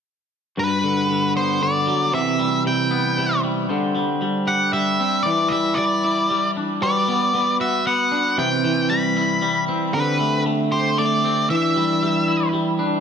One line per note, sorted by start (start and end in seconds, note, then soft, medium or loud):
0.57 1.88 G2 soft
0.57 2.12 G3 soft
0.57 2.12 F#4 soft
0.57 3.67 B4 soft
0.57 1.32 B4 soft
0.84 1.08 D3 soft
1.09 1.60 D3 soft
1.35 2.14 B3 soft
1.35 1.60 C5 soft
1.61 2.13 D3 soft
1.61 2.14 D5 soft
1.87 2.14 F#3 soft
2.13 3.68 C3 soft
2.13 2.65 C3 soft
2.13 3.68 E3 soft
2.13 2.63 E5 medium
2.39 3.44 G3 soft
2.66 3.17 C3 soft
2.66 3.40 G5 soft
2.91 3.69 B3 soft
3.18 3.70 C3 soft
3.44 3.95 G3 soft
3.69 5.00 D3 soft
3.69 8.34 G3 soft
3.69 5.24 D4 soft
3.69 5.24 C5 soft
3.95 4.21 G3 soft
4.22 4.73 G3 soft
4.47 6.04 G4 soft
4.47 4.73 F#5 medium
4.73 5.51 G3 soft
4.73 5.22 E5 medium
5.00 5.26 C4 soft
5.23 6.56 E3 soft
5.23 6.80 E4 soft
5.23 5.51 D5 medium
5.23 6.81 D5 soft
5.49 5.78 G3 soft
5.49 5.77 E5 soft
5.75 6.30 G3 soft
5.75 6.50 D5 soft
6.04 6.82 E4 soft
6.30 6.82 G3 soft
6.57 6.82 D4 soft
6.82 8.64 G3 soft
6.82 8.36 F#4 soft
6.82 9.91 B4 soft
6.82 7.56 D5 soft
7.08 7.33 B3 soft
7.34 7.86 B3 soft
7.60 8.38 F#4 soft
7.60 7.86 E5 soft
7.87 8.38 B3 soft
7.87 8.38 F#5 medium
8.12 8.38 D4 soft
8.37 9.68 C3 soft
8.37 9.92 E3 soft
8.37 9.92 C4 soft
8.37 8.92 G5 medium
8.64 9.94 E3 soft
8.90 9.42 G3 soft
8.90 9.64 B5 medium
9.17 9.94 E4 soft
9.42 10.20 G3 soft
9.68 9.94 C4 soft
9.93 11.48 D3 soft
9.93 11.24 D3 soft
9.93 11.48 C4 soft
9.93 13.00 G4 soft
9.93 10.42 B4 medium
10.20 10.45 A3 soft
10.46 10.97 A3 soft
10.72 12.28 G4 soft
10.72 10.96 C5 soft
10.98 11.50 A3 soft
10.98 11.50 D5 medium
11.24 11.50 C4 soft
11.50 13.00 E3 soft
11.50 12.80 E3 soft
11.50 13.00 D4 soft
11.50 12.50 E5 medium
11.76 12.02 G3 soft
12.03 12.52 G3 soft
12.28 13.00 E4 soft
12.53 13.00 G3 soft
12.79 13.00 D4 soft